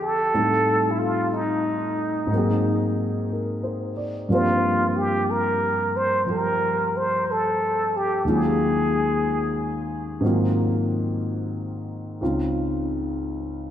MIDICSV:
0, 0, Header, 1, 3, 480
1, 0, Start_track
1, 0, Tempo, 991736
1, 147, Time_signature, 4, 2, 24, 8
1, 6633, End_track
2, 0, Start_track
2, 0, Title_t, "Muted trumpet"
2, 0, Program_c, 0, 59
2, 11, Note_on_c, 0, 69, 74
2, 441, Note_on_c, 0, 64, 42
2, 448, Note_off_c, 0, 69, 0
2, 479, Note_on_c, 0, 65, 66
2, 486, Note_off_c, 0, 64, 0
2, 646, Note_on_c, 0, 63, 54
2, 653, Note_off_c, 0, 65, 0
2, 1436, Note_off_c, 0, 63, 0
2, 2091, Note_on_c, 0, 65, 62
2, 2410, Note_on_c, 0, 67, 62
2, 2417, Note_off_c, 0, 65, 0
2, 2569, Note_on_c, 0, 70, 67
2, 2576, Note_off_c, 0, 67, 0
2, 2888, Note_on_c, 0, 72, 76
2, 2895, Note_off_c, 0, 70, 0
2, 3038, Note_off_c, 0, 72, 0
2, 3051, Note_on_c, 0, 70, 63
2, 3374, Note_on_c, 0, 72, 67
2, 3381, Note_off_c, 0, 70, 0
2, 3540, Note_on_c, 0, 69, 70
2, 3547, Note_off_c, 0, 72, 0
2, 3857, Note_on_c, 0, 67, 60
2, 3864, Note_off_c, 0, 69, 0
2, 4001, Note_off_c, 0, 67, 0
2, 4017, Note_on_c, 0, 68, 59
2, 4778, Note_off_c, 0, 68, 0
2, 6633, End_track
3, 0, Start_track
3, 0, Title_t, "Grand piano"
3, 0, Program_c, 1, 0
3, 0, Control_c, 1, 64, 127
3, 0, Note_on_c, 1, 41, 35
3, 0, Note_on_c, 1, 48, 35
3, 0, Note_on_c, 1, 50, 27
3, 0, Note_on_c, 1, 55, 34
3, 0, Note_on_c, 1, 57, 27
3, 0, Note_on_c, 1, 65, 28
3, 0, Note_on_c, 1, 69, 30
3, 0, Note_on_c, 1, 76, 33
3, 136, Note_off_c, 1, 41, 0
3, 145, Note_off_c, 1, 48, 0
3, 150, Note_off_c, 1, 50, 0
3, 150, Note_off_c, 1, 55, 0
3, 153, Note_off_c, 1, 57, 0
3, 153, Note_off_c, 1, 65, 0
3, 153, Control_c, 1, 64, 0
3, 156, Note_off_c, 1, 69, 0
3, 158, Note_off_c, 1, 76, 0
3, 165, Note_on_c, 1, 45, 42
3, 165, Note_on_c, 1, 55, 37
3, 167, Note_on_c, 1, 60, 38
3, 167, Note_on_c, 1, 63, 37
3, 170, Note_on_c, 1, 69, 43
3, 245, Control_c, 1, 64, 127
3, 1097, Note_on_c, 1, 44, 39
3, 1113, Control_c, 1, 64, 0
3, 1113, Note_on_c, 1, 54, 38
3, 1117, Note_off_c, 1, 45, 0
3, 1117, Note_off_c, 1, 55, 0
3, 1118, Note_off_c, 1, 60, 0
3, 1118, Note_off_c, 1, 63, 0
3, 1120, Note_off_c, 1, 69, 0
3, 1127, Note_on_c, 1, 58, 38
3, 1139, Note_on_c, 1, 60, 35
3, 1151, Note_on_c, 1, 68, 46
3, 1199, Control_c, 1, 64, 127
3, 1609, Note_on_c, 1, 70, 30
3, 1759, Note_on_c, 1, 72, 32
3, 1898, Note_off_c, 1, 70, 0
3, 1920, Note_on_c, 1, 74, 37
3, 2002, Note_off_c, 1, 72, 0
3, 2063, Note_off_c, 1, 44, 0
3, 2071, Note_off_c, 1, 54, 0
3, 2074, Note_on_c, 1, 43, 38
3, 2075, Control_c, 1, 64, 0
3, 2078, Note_off_c, 1, 58, 0
3, 2080, Note_on_c, 1, 53, 34
3, 2084, Note_off_c, 1, 60, 0
3, 2086, Note_on_c, 1, 58, 37
3, 2090, Note_off_c, 1, 68, 0
3, 2092, Note_on_c, 1, 60, 34
3, 2101, Note_on_c, 1, 72, 41
3, 2145, Control_c, 1, 64, 127
3, 2162, Note_off_c, 1, 74, 0
3, 3024, Note_off_c, 1, 53, 0
3, 3031, Note_on_c, 1, 53, 29
3, 3037, Note_on_c, 1, 55, 29
3, 3045, Note_on_c, 1, 67, 34
3, 3986, Note_off_c, 1, 43, 0
3, 3986, Note_off_c, 1, 53, 0
3, 3988, Note_off_c, 1, 55, 0
3, 3990, Control_c, 1, 64, 0
3, 3990, Note_on_c, 1, 39, 38
3, 3991, Note_on_c, 1, 51, 36
3, 3992, Note_off_c, 1, 58, 0
3, 3992, Note_off_c, 1, 67, 0
3, 3995, Note_off_c, 1, 60, 0
3, 3999, Note_on_c, 1, 54, 34
3, 4000, Note_off_c, 1, 72, 0
3, 4004, Note_on_c, 1, 56, 33
3, 4006, Note_on_c, 1, 61, 35
3, 4010, Note_on_c, 1, 65, 42
3, 4064, Control_c, 1, 64, 127
3, 4932, Note_off_c, 1, 51, 0
3, 4939, Note_on_c, 1, 44, 42
3, 4940, Note_on_c, 1, 51, 37
3, 4941, Note_off_c, 1, 54, 0
3, 4947, Note_off_c, 1, 39, 0
3, 4948, Note_on_c, 1, 54, 37
3, 4950, Control_c, 1, 64, 0
3, 4950, Note_on_c, 1, 58, 39
3, 4954, Note_off_c, 1, 56, 0
3, 4955, Note_off_c, 1, 61, 0
3, 4957, Note_off_c, 1, 65, 0
3, 4958, Note_on_c, 1, 60, 37
3, 4966, Note_on_c, 1, 65, 44
3, 5047, Control_c, 1, 64, 127
3, 5907, Note_off_c, 1, 44, 0
3, 5908, Note_off_c, 1, 51, 0
3, 5908, Note_off_c, 1, 60, 0
3, 5910, Note_on_c, 1, 37, 36
3, 5912, Note_off_c, 1, 54, 0
3, 5912, Note_off_c, 1, 65, 0
3, 5913, Note_off_c, 1, 58, 0
3, 5913, Note_on_c, 1, 49, 31
3, 5913, Note_on_c, 1, 63, 34
3, 5915, Note_on_c, 1, 60, 34
3, 5916, Control_c, 1, 64, 0
3, 5920, Note_on_c, 1, 65, 41
3, 5989, Control_c, 1, 64, 127
3, 6633, Note_off_c, 1, 37, 0
3, 6633, Note_off_c, 1, 49, 0
3, 6633, Note_off_c, 1, 60, 0
3, 6633, Note_off_c, 1, 63, 0
3, 6633, Note_off_c, 1, 65, 0
3, 6633, End_track
0, 0, End_of_file